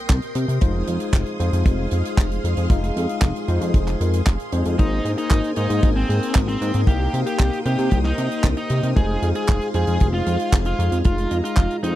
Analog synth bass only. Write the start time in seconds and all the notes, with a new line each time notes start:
0.10 C2
0.35 C3
0.48 C3
0.62 F1
0.88 F2
1.13 F1
1.40 F2
1.53 F2
1.66 F1
1.92 F2
2.18 F1
2.44 F2
2.57 F2
2.70 F1
2.96 F2
3.22 F1
3.48 F2
3.61 F2
3.74 F1
4.01 F2
4.27 F1
4.53 F2
4.66 F2
4.79 G#1
5.05 G#2
5.31 G#1
5.57 G#2
5.70 G#2
5.83 G#1
6.09 G#2
6.36 G#1
6.61 G#2
6.74 G#2
6.87 C2
7.14 C3
7.40 C2
7.66 C3
7.79 C3
7.92 C2
8.18 C3
8.44 C2
8.70 C3
8.83 C3
8.96 F1
9.22 F2
9.49 F1
9.75 F2
9.88 F2
10.01 F1
10.27 F2
10.53 F1
10.79 F2
10.92 F2
11.05 F1
11.31 F2
11.57 F1
11.83 F2